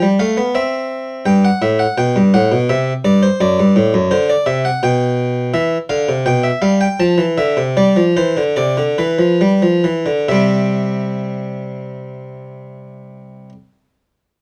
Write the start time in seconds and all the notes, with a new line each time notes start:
0.02 G3
0.19 A3 F5
0.37 B3
0.55 C4 E5
1.26 G2 G5
1.45 F#5
1.62 A2 E5
1.79 F#5
1.98 B2 G5
2.16 G2
2.34 A2 F#5
2.52 B2
2.69 C3 E5
3.04 G2 D5
3.22 C5
3.40 F#2 D5
3.59 G2
3.76 A2
3.94 F#2
4.11 D3 C5
4.29 D5
4.46 C3 E5
4.65 F#5
4.83 B2 G5
5.54 E3 E5
5.89 D3 F5
6.09 C3
6.26 B2 G5
6.44 E5
6.62 G3 F5
6.81 G5
7.00 F3 A5
7.18 E3
7.38 D3 E5
7.57 C3
7.77 G3 D5
7.97 F3
8.17 E3 C5
8.37 D3
8.56 C3 D5
8.78 D3
8.99 E3 B4
9.19 F3
9.41 G3
9.63 F3
9.84 E3
10.06 D3
10.29 C3 G3 C4 E5